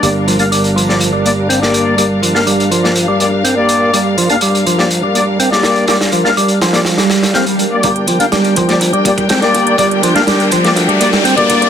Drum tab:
HH |x-xxxxx-x-x-x-x-|x-x-xxx-x-xxx-x-|x-xxxxx-x-x-x-xx|xxx-xxxxxxxxxxxx|
SD |-------o-----o--|---o---o--------|-------o-----oo-|oo-o--ooooooo---|
BD |----------------|----------------|----------------|----------------|

HH |xxxxxxxxxxxxxxxx|xxxxxxxxxxxxxxxx|
SD |----o--o----oo--|---oo--o---o----|
BD |o-----o---oo----|o-----o------oo-|